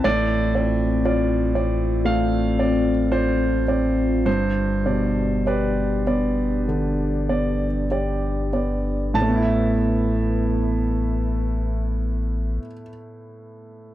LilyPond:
<<
  \new Staff \with { instrumentName = "Ambient pad" } { \time 4/4 \key a \minor \tempo 4 = 50 <c' f' d''>1 | <d' g' d''>1 | <b b' e''>1 | }
  \new Staff \with { instrumentName = "Grand piano" } { \time 4/4 \key a \minor << { d''2 f''4 c''4 | c''4 b'2 r4 | <a, a b e' e'' a''>1 | } \\ { a,8 <c' d''>8 <f' d''>8 <c' d''>8 a8 <c' d''>8 <f' d''>8 <c' d''>8 | g,8 <b, d''>8 <g' d''>8 <b d''>8 d8 <b d''>8 <g' d''>8 <b d''>8 | r1 | } >> }
  \new Staff \with { instrumentName = "Sub bass" } { \clef bass \time 4/4 \key a \minor a,,1 | g,,1 | a,,1 | }
>>